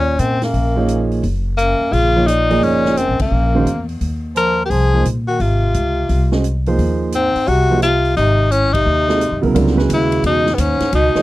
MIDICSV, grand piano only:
0, 0, Header, 1, 2, 480
1, 0, Start_track
1, 0, Tempo, 346620
1, 1703, Time_signature, 4, 2, 24, 8
1, 15539, End_track
2, 0, Start_track
2, 0, Title_t, "Grand piano"
2, 0, Program_c, 0, 0
2, 1052, Note_on_c, 0, 53, 61
2, 1055, Note_on_c, 0, 63, 63
2, 1056, Note_on_c, 0, 58, 59
2, 1061, Note_on_c, 0, 68, 60
2, 1063, Note_on_c, 0, 73, 68
2, 1669, Note_off_c, 0, 53, 0
2, 1670, Note_off_c, 0, 63, 0
2, 1671, Note_off_c, 0, 58, 0
2, 1674, Note_off_c, 0, 68, 0
2, 1675, Note_off_c, 0, 73, 0
2, 2991, Note_on_c, 0, 53, 64
2, 2994, Note_on_c, 0, 58, 53
2, 2997, Note_on_c, 0, 63, 53
2, 3000, Note_on_c, 0, 73, 64
2, 3001, Note_on_c, 0, 68, 54
2, 3137, Note_off_c, 0, 53, 0
2, 3138, Note_off_c, 0, 58, 0
2, 3140, Note_off_c, 0, 63, 0
2, 3141, Note_off_c, 0, 73, 0
2, 3142, Note_off_c, 0, 68, 0
2, 3464, Note_on_c, 0, 53, 81
2, 3467, Note_on_c, 0, 58, 71
2, 3467, Note_on_c, 0, 63, 69
2, 3474, Note_on_c, 0, 68, 73
2, 3475, Note_on_c, 0, 75, 88
2, 4078, Note_off_c, 0, 53, 0
2, 4079, Note_off_c, 0, 58, 0
2, 4080, Note_off_c, 0, 63, 0
2, 4083, Note_off_c, 0, 68, 0
2, 4084, Note_off_c, 0, 75, 0
2, 4913, Note_on_c, 0, 51, 64
2, 4914, Note_on_c, 0, 56, 54
2, 4918, Note_on_c, 0, 61, 57
2, 4927, Note_on_c, 0, 66, 51
2, 4928, Note_on_c, 0, 72, 67
2, 5060, Note_off_c, 0, 51, 0
2, 5060, Note_off_c, 0, 56, 0
2, 5062, Note_off_c, 0, 61, 0
2, 5066, Note_off_c, 0, 66, 0
2, 5067, Note_off_c, 0, 72, 0
2, 6833, Note_on_c, 0, 53, 49
2, 6840, Note_on_c, 0, 63, 50
2, 6843, Note_on_c, 0, 58, 52
2, 6843, Note_on_c, 0, 68, 45
2, 6849, Note_on_c, 0, 72, 65
2, 6980, Note_off_c, 0, 53, 0
2, 6983, Note_off_c, 0, 63, 0
2, 6985, Note_off_c, 0, 58, 0
2, 6985, Note_off_c, 0, 68, 0
2, 6988, Note_off_c, 0, 72, 0
2, 8746, Note_on_c, 0, 56, 54
2, 8750, Note_on_c, 0, 61, 47
2, 8755, Note_on_c, 0, 72, 47
2, 8757, Note_on_c, 0, 66, 48
2, 8764, Note_on_c, 0, 75, 60
2, 8896, Note_off_c, 0, 56, 0
2, 8897, Note_off_c, 0, 61, 0
2, 8900, Note_off_c, 0, 72, 0
2, 8901, Note_off_c, 0, 66, 0
2, 8904, Note_off_c, 0, 75, 0
2, 9237, Note_on_c, 0, 53, 70
2, 9238, Note_on_c, 0, 63, 59
2, 9240, Note_on_c, 0, 58, 62
2, 9248, Note_on_c, 0, 72, 80
2, 9250, Note_on_c, 0, 68, 64
2, 9843, Note_off_c, 0, 53, 0
2, 9843, Note_off_c, 0, 63, 0
2, 9844, Note_off_c, 0, 58, 0
2, 9849, Note_off_c, 0, 68, 0
2, 9849, Note_off_c, 0, 72, 0
2, 10659, Note_on_c, 0, 58, 55
2, 10661, Note_on_c, 0, 53, 65
2, 10667, Note_on_c, 0, 63, 54
2, 10675, Note_on_c, 0, 68, 55
2, 10678, Note_on_c, 0, 72, 62
2, 10810, Note_off_c, 0, 58, 0
2, 10811, Note_off_c, 0, 53, 0
2, 10814, Note_off_c, 0, 63, 0
2, 10818, Note_off_c, 0, 68, 0
2, 10819, Note_off_c, 0, 72, 0
2, 12574, Note_on_c, 0, 63, 55
2, 12577, Note_on_c, 0, 66, 55
2, 12579, Note_on_c, 0, 56, 64
2, 12579, Note_on_c, 0, 60, 58
2, 12587, Note_on_c, 0, 69, 61
2, 12725, Note_off_c, 0, 63, 0
2, 12726, Note_off_c, 0, 66, 0
2, 12728, Note_off_c, 0, 56, 0
2, 12728, Note_off_c, 0, 60, 0
2, 12732, Note_off_c, 0, 69, 0
2, 13038, Note_on_c, 0, 54, 61
2, 13041, Note_on_c, 0, 49, 72
2, 13050, Note_on_c, 0, 64, 59
2, 13054, Note_on_c, 0, 59, 58
2, 13056, Note_on_c, 0, 70, 73
2, 13202, Note_off_c, 0, 70, 0
2, 13213, Note_on_c, 0, 55, 68
2, 13214, Note_on_c, 0, 50, 72
2, 13220, Note_on_c, 0, 65, 59
2, 13223, Note_on_c, 0, 70, 69
2, 13225, Note_on_c, 0, 60, 58
2, 13496, Note_off_c, 0, 55, 0
2, 13497, Note_off_c, 0, 50, 0
2, 13500, Note_off_c, 0, 65, 0
2, 13501, Note_off_c, 0, 70, 0
2, 13503, Note_off_c, 0, 60, 0
2, 13512, Note_off_c, 0, 49, 0
2, 13530, Note_on_c, 0, 56, 57
2, 13531, Note_on_c, 0, 61, 60
2, 13533, Note_on_c, 0, 49, 64
2, 13536, Note_on_c, 0, 66, 56
2, 13540, Note_on_c, 0, 71, 75
2, 13658, Note_off_c, 0, 54, 0
2, 13664, Note_off_c, 0, 64, 0
2, 13666, Note_off_c, 0, 59, 0
2, 14555, Note_off_c, 0, 56, 0
2, 14555, Note_off_c, 0, 61, 0
2, 14556, Note_off_c, 0, 49, 0
2, 14558, Note_off_c, 0, 66, 0
2, 14560, Note_off_c, 0, 71, 0
2, 15448, Note_on_c, 0, 52, 65
2, 15453, Note_on_c, 0, 58, 65
2, 15459, Note_on_c, 0, 63, 69
2, 15464, Note_on_c, 0, 73, 81
2, 15467, Note_on_c, 0, 68, 67
2, 15539, Note_off_c, 0, 52, 0
2, 15539, Note_off_c, 0, 58, 0
2, 15539, Note_off_c, 0, 63, 0
2, 15539, Note_off_c, 0, 68, 0
2, 15539, Note_off_c, 0, 73, 0
2, 15539, End_track
0, 0, End_of_file